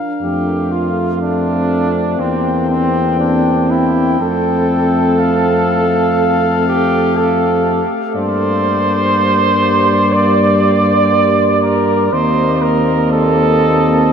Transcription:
Already playing: french horn D4, trumpet F5
0.22 tuba F2, trombone A3, trumpet G4
0.72 trumpet F4
1.22 french horn C4, trumpet D4
2.20 tuba E2, trombone A#3, trumpet C4 G5
2.70 trumpet C4
3.20 trumpet D4
3.70 trumpet E4
4.20 tuba F2, trombone A3, french horn C4, trumpet A4
5.19 trumpet F5
6.68 trumpet G4
7.17 trumpet A4
8.15 tuba G2, french horn A#3, trumpet C5 D5
9.14 trombone G3
10.13 trumpet D5
11.63 trumpet A#4
12.12 tuba D#2, trombone A#3, french horn C4, trumpet C5 D#5
12.62 trumpet A#4
13.12 trumpet A4

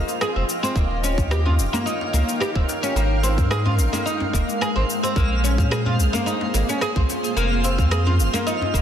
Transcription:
Already playing: oud A#3, ambient pad F4 C5 D#5 G5, synth texture F5
0.09 cabasa
0.21 oud G#4, cross-stick, cabasa
0.36 sub bass F1, oud C4
0.49 cabasa
0.63 oud C4, cabasa
0.75 sub bass D#1, oud A#3, ambient pad D#4, kick, cabasa
0.91 djembe tone
0.95 ambient pad C#5
1.04 oud C#4, cabasa
1.11 ambient pad A#4
1.18 sub bass D#2, kick, cabasa
1.31 oud G4, cross-stick, djembe slap, cabasa
1.46 oud F4, djembe bass
1.58 sub bass D#1, djembe tone, cabasa
1.73 oud A#3, ambient pad F5, djembe slap, djembe bass, cabasa
1.86 oud D#4, cabasa
2.01 djembe slap
2.13 sub bass C#2, oud A#3, djembe slap, cabasa
2.29 cabasa
2.40 oud G4, cross-stick, cabasa
2.55 sub bass D#1, oud C4, kick
2.69 djembe slap, cabasa
2.83 oud C#4, cabasa
2.95 sub bass G#1, ambient pad G#3, oud A#3, cabasa
3.23 oud C4, cabasa
3.38 sub bass G#2, kick, djembe tone, cabasa
3.51 oud G#4, cross-stick, djembe slap, cabasa
3.56 ambient pad G#4
3.66 oud F4, ambient pad C5, djembe bass
3.78 sub bass G#1, djembe tone, cabasa
3.93 oud A#3, djembe slap, djembe bass, cabasa
4.06 oud D#4, cabasa
4.20 djembe slap, djembe tone, djembe bass
4.33 sub bass D#1, oud A#3, kick, cabasa
4.49 cabasa
4.61 oud G#4, cross-stick, cabasa
4.76 sub bass G#1, oud C4
4.90 cabasa
5.03 oud C4, cabasa
5.16 sub bass A#1, oud A#3, ambient pad A#3, kick, cabasa
5.31 djembe tone
5.36 ambient pad F4
5.44 oud C#4, cabasa
5.58 sub bass A#2, kick, cabasa
5.71 oud G#4, cross-stick, djembe slap, cabasa
5.86 oud F4, djembe bass
5.99 sub bass A#1, djembe tone, cabasa
6.13 oud A#3, djembe slap, djembe bass, cabasa
6.26 oud D#4, cabasa
6.41 djembe slap
6.54 sub bass G#1, oud A#3, djembe slap, cabasa
6.69 oud C#4, cabasa
6.81 oud G#4, cross-stick, cabasa
6.96 sub bass A#1, oud C4, kick
7.10 djembe slap, cabasa
7.24 cabasa
7.36 sub bass F1, oud A#3, cabasa
7.64 oud C4, cabasa
7.78 sub bass F2, kick, djembe tone, cabasa
7.91 oud G#4, cross-stick, djembe slap, cabasa
8.06 oud F4, djembe bass
8.11 ambient pad G#5
8.19 sub bass F1, djembe tone, cabasa
8.34 oud A#3, djembe slap, djembe bass, cabasa
8.47 oud D#4, cabasa
8.61 djembe slap, djembe tone, djembe bass
8.74 sub bass D#1, oud A#3, kick, cabasa

